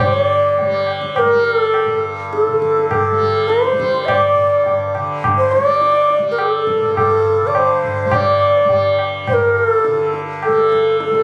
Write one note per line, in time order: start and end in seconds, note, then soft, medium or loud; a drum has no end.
0.00 1.85 G2 soft
0.00 2.47 D3 soft
0.00 0.61 G3 medium
0.06 0.15 C5 medium
0.14 0.87 D5 medium
0.58 1.25 G3 medium
0.58 tabla tin medium
0.58 tabla ge soft
0.87 tabla na medium
1.01 tabla ke medium
1.15 1.45 A#4 medium
1.15 1.20 C5 medium
1.15 tabla na medium
1.15 tabla ge medium
1.25 3.11 G3 medium
1.45 1.57 A#4 medium
1.57 2.04 A4 medium
1.74 tabla na medium
1.85 4.34 G2 medium
2.33 2.87 A4 medium
2.33 tabla te medium
2.47 4.94 D3 soft
2.47 tabla te soft
2.62 tabla ke medium
2.77 tabla te medium
2.91 3.50 A4 medium
2.91 2.96 A#4 medium
2.91 tabla na medium
2.91 tabla ge medium
3.11 3.72 G3 medium
3.20 tabla ge medium
3.48 4.07 C5 medium
3.48 tabla te medium
3.64 tabla te medium
3.72 5.58 G3 medium
3.80 tabla ke medium
3.94 tabla te medium
4.05 4.93 D5 medium
4.05 4.10 E5 medium
4.05 tabla na loud
4.05 tabla ge medium
4.34 6.80 G2 soft
4.66 tabla tin medium
4.66 tabla ge medium
4.95 7.42 D3 medium
4.95 tabla na soft
5.24 tabla na medium
5.24 tabla ge medium
5.38 5.53 C5 medium
5.52 6.25 D5 loud
5.52 tabla te medium
5.58 6.18 G3 medium
5.81 tabla te medium
6.10 tabla te medium
6.18 8.05 G3 medium
6.31 6.42 A#4 medium
6.38 6.97 A4 medium
6.38 tabla na medium
6.67 tabla ke medium
6.81 9.27 G2 medium
6.97 7.48 A4 medium
6.97 tabla na medium
6.97 tabla ge medium
7.26 tabla ge soft
7.42 9.86 D3 soft
7.47 7.58 D5 medium
7.55 8.16 C5 medium
7.55 tabla na medium
7.55 tabla ge medium
7.84 tabla ge soft
8.05 8.64 G3 medium
8.11 9.00 D5 medium
8.11 tabla na loud
8.11 tabla ge medium
8.64 10.47 G3 medium
8.69 tabla tin medium
8.69 tabla ge medium
8.99 tabla na medium
9.27 11.23 G2 medium
9.27 9.34 C5 medium
9.27 tabla na medium
9.27 tabla ge medium
9.33 9.58 A#4 medium
9.58 9.69 A#4 loud
9.69 10.15 A4 loud
9.84 11.23 D3 medium
9.84 tabla te medium
10.14 tabla te medium
10.43 10.98 A4 medium
10.43 tabla na medium
10.47 11.11 G3 medium
10.72 tabla ke medium
11.00 tabla te medium
11.04 11.23 A4 medium
11.11 11.23 G3 medium
11.11 tabla te medium